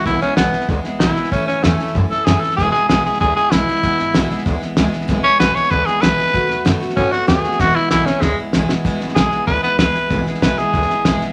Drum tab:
HH |----p-------p---|----p-------p---|----p-------p---|----p-------p---|
SD |o-o-o-ooo-o-o-oo|o-o-o-ooo-o-o-oo|o-o-o-ooo-o-o-oo|o-o-o-ooo-o-o-oo|
BD |o-------o-------|o-------o-------|o-------o-------|o-------o-------|

HH |----p-------p---|----p-------p---|----p-------p---|----p-------p---|
SD |o-o-o-ooo-o-o-oo|o-o-o-ooo-o-o-oo|o---o-o-o---o-o-|o-ooo-o-o-o-o-o-|
BD |o-------o-------|o-------o-------|o-------o-------|o---o---o---o---|

HH |----p-------p---|
SD |o-ooo-o-ooo-o-o-|
BD |o---o---o---o---|